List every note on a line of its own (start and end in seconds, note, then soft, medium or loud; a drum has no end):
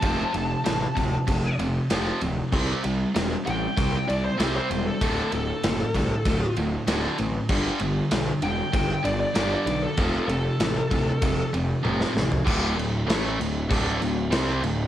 0.00 0.22 F1 medium
0.00 0.32 F2 medium
0.00 0.32 C3 medium
0.00 0.32 F3 loud
0.00 1.55 A5 loud
0.00 kick loud
0.00 ride medium
0.34 0.54 F1 medium
0.34 0.62 F2 medium
0.34 0.62 C3 medium
0.34 ride medium
0.64 0.85 A1 medium
0.64 0.93 F2 medium
0.64 0.93 C3 medium
0.64 snare loud
0.64 ride medium
0.95 1.16 D1 medium
0.95 1.24 F2 medium
0.95 1.24 C3 medium
0.95 kick medium
0.95 ride medium
1.27 1.47 F1 medium
1.27 1.55 F2 medium
1.27 1.55 C3 medium
1.27 kick loud
1.27 ride medium
1.59 1.78 F1 medium
1.59 1.87 F2 medium
1.59 1.87 C3 medium
1.59 ride medium
1.90 2.10 F1 medium
1.90 2.19 F2 medium
1.90 2.19 C3 medium
1.90 2.20 F3 loud
1.90 snare loud
1.90 ride loud
2.21 2.41 D1 medium
2.21 2.49 F2 medium
2.21 2.49 C3 medium
2.21 ride medium
2.52 2.72 C2 loud
2.52 2.81 C3 medium
2.52 2.82 G3 medium
2.52 2.82 C4 loud
2.52 kick loud
2.52 crash loud
2.83 3.03 C2 medium
2.83 3.11 C3 medium
2.83 3.11 G3 medium
2.83 ride medium
3.14 3.34 E1 medium
3.14 3.42 C3 medium
3.14 3.43 G3 medium
3.14 snare loud
3.14 ride loud
3.45 3.66 A1 medium
3.45 3.73 C3 medium
3.45 3.73 G3 medium
3.45 4.06 G5 medium
3.45 ride medium
3.76 3.96 C2 loud
3.76 4.04 C3 medium
3.76 4.05 G3 medium
3.76 kick loud
3.76 ride loud
4.07 4.28 C2 medium
4.07 4.36 C3 medium
4.07 4.36 G3 medium
4.07 4.23 D5 medium
4.07 ride medium
4.25 4.54 C5 medium
4.37 4.58 C2 medium
4.37 4.67 C3 medium
4.37 4.68 G3 medium
4.37 4.68 C4 loud
4.37 snare loud
4.37 ride medium
4.56 4.85 C5 medium
4.70 4.89 E1 medium
4.70 4.98 C3 medium
4.70 4.98 G3 medium
4.70 ride medium
4.86 5.31 A4 loud
5.01 5.20 D1 medium
5.01 5.30 D2 medium
5.01 5.31 A2 loud
5.01 5.31 D3 medium
5.01 kick loud
5.01 ride loud
5.32 5.51 D1 medium
5.32 5.60 D2 medium
5.32 5.60 A2 medium
5.32 6.54 A4 loud
5.32 ride medium
5.63 5.82 F#1 medium
5.63 5.91 D2 medium
5.63 5.91 A2 medium
5.63 snare loud
5.63 ride medium
5.94 6.13 C2 medium
5.94 6.23 D2 medium
5.94 6.23 A2 medium
5.94 kick medium
5.94 ride medium
6.25 6.44 D1 loud
6.25 6.54 D2 medium
6.25 6.54 A2 medium
6.25 kick loud
6.25 ride loud
6.57 6.76 D1 medium
6.57 6.84 D2 medium
6.57 6.85 A2 medium
6.57 ride medium
6.87 7.06 D1 medium
6.87 7.16 D2 loud
6.87 7.17 A2 medium
6.87 7.17 D3 loud
6.87 snare loud
6.87 ride loud
7.18 7.38 A1 loud
7.18 7.46 D2 medium
7.18 7.46 A2 medium
7.18 ride medium
7.49 7.68 G1 medium
7.49 7.78 G2 loud
7.49 7.79 D3 medium
7.49 7.79 G3 loud
7.49 kick loud
7.49 crash medium
7.79 7.99 G1 medium
7.79 8.08 G2 medium
7.79 8.08 D3 medium
7.79 ride medium
8.11 8.30 B1 medium
8.11 8.39 G2 medium
8.11 8.40 D3 medium
8.11 snare loud
8.11 ride loud
8.42 8.61 E1 medium
8.42 8.70 G2 medium
8.42 8.70 D3 medium
8.42 9.03 G5 loud
8.42 ride medium
8.73 8.92 G1 medium
8.73 9.01 G2 medium
8.73 9.01 D3 medium
8.73 kick loud
8.73 ride loud
9.03 9.23 G1 medium
9.03 9.32 G2 medium
9.03 9.32 D3 medium
9.03 9.19 D5 medium
9.03 ride medium
9.20 9.50 D5 medium
9.35 9.54 G1 medium
9.35 9.64 G2 medium
9.35 9.64 D3 medium
9.35 9.65 G3 loud
9.35 snare loud
9.35 ride loud
9.52 9.82 D5 medium
9.66 9.85 B1 medium
9.66 9.94 G2 medium
9.66 9.95 D3 medium
9.66 ride medium
9.82 10.27 A4 medium
9.97 10.17 F1 loud
9.97 10.27 F2 loud
9.97 10.27 C3 loud
9.97 10.27 F3 loud
9.97 kick loud
9.97 ride medium
10.28 10.47 F1 medium
10.28 10.56 F2 medium
10.28 10.57 C3 medium
10.28 11.49 A4 loud
10.28 ride medium
10.60 10.79 A1 medium
10.60 10.88 F2 medium
10.60 10.88 C3 medium
10.60 snare loud
10.60 ride medium
10.90 11.10 D1 loud
10.90 11.18 F2 medium
10.90 11.18 C3 medium
10.90 kick medium
10.90 ride medium
11.21 11.41 F1 loud
11.21 11.50 F2 medium
11.21 11.50 C3 medium
11.21 kick loud
11.21 ride loud
11.53 11.72 F1 medium
11.53 11.81 F2 medium
11.53 11.81 C3 medium
11.53 ride medium
11.83 12.04 F1 medium
11.83 12.13 F2 medium
11.83 12.13 C3 medium
11.83 12.13 F3 loud
11.83 high tom medium
12.01 snare medium
12.14 12.34 A1 loud
12.14 12.42 F2 medium
12.14 12.42 C3 medium
12.14 snare medium
12.32 floor tom medium
12.45 12.76 D1 loud
12.45 12.74 D2 loud
12.45 12.75 A2 loud
12.45 12.76 D3 loud
12.45 kick loud
12.45 crash loud
12.45 crash medium
12.76 13.06 D1 medium
12.76 13.01 D2 medium
12.76 13.01 A2 medium
12.76 crash medium
13.07 13.37 A1 loud
13.07 13.37 A2 loud
13.07 13.38 E3 loud
13.07 13.38 A3 loud
13.07 snare loud
13.07 crash medium
13.39 13.68 D1 medium
13.39 13.63 D2 medium
13.39 13.64 A2 medium
13.39 crash medium
13.69 13.99 D1 loud
13.69 13.99 D2 medium
13.69 14.00 A2 loud
13.69 14.00 D3 loud
13.69 kick loud
13.69 crash medium
14.01 14.30 D1 medium
14.01 14.26 D2 medium
14.01 14.26 A2 medium
14.01 crash medium
14.31 14.61 C2 loud
14.31 14.61 C3 medium
14.31 14.61 G3 loud
14.31 14.62 C4 loud
14.31 snare loud
14.31 crash medium
14.62 14.87 D1 medium
14.62 14.87 D2 medium
14.62 14.87 A2 medium
14.62 crash medium